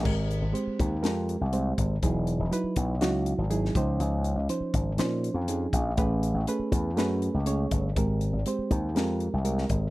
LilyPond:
<<
  \new Staff \with { instrumentName = "Reed electric piano" } { \time 4/4 \key aes \major \tempo 4 = 121 <aes c' g' bes'>4 <aes c' g' c''>4 <aes c' g' bes'>4 <aes c' g' c''>4 | <fis dis' e' gis'>4 <fis dis' e' b'>4 <fis dis' e' fis'>4 <fis dis' e' gis'>8 <f des' ees' c''>8~ | <f des' ees' c''>8. r16 <f des' ees' c''>4 <f des' ees' c''>4 <f des' ees' aes'>4 | <a cis' gis' b'>4 <a cis' gis' b'>4 <a cis' gis' b'>4 <a cis' gis' cis''>4 |
<aes c' g' bes'>4 <aes c' g' c''>4 <aes c' g' bes'>4 <aes c' g' bes'>4 | }
  \new Staff \with { instrumentName = "Slap bass" } { \clef bass \time 4/4 \key aes \major aes,,8. aes,,16 r8 ees,8 f,8. c,8. aes,,8 | e,,8. e,,16 r8 b,,8 des,8. gis,,8. des,8 | des,8. des,16 r8 aes,,8 bes,8. f,8. bes,,8 | a,,8. a,,16 r8 e,8 ges,8. cis,8. g,,8 |
aes,,8. aes,,16 r8 ees,8 f,8. c,8. aes,,8 | }
  \new DrumStaff \with { instrumentName = "Drums" } \drummode { \time 4/4 <cymc bd>8 hh8 hh8 <hh bd>8 <hh sn>8 hh8 hh8 <hh bd>8 | <hh bd>8 hh8 hh8 <hh bd>8 <hh sn>8 hh8 hh16 sn16 <hh bd>8 | hh8 hh8 hh8 <hh bd>8 <hh sn>8 hh8 hh8 <hh bd>8 | <hh bd>8 hh8 hh8 <hh bd>8 <hh sn>8 hh8 hh8 <hh bd>8 |
<hh bd>8 hh8 hh8 <hh bd>8 <hh sn>8 hh8 hh16 sn16 <hh bd>8 | }
>>